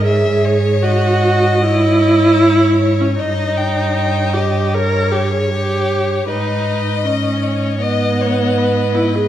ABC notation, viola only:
X:1
M:4/4
L:1/16
Q:1/4=77
K:G#m
V:1 name="Viola"
G4 F4 E6- E C | D6 =G2 A2 G ^G =G4 | D4 C4 B,6 E G |]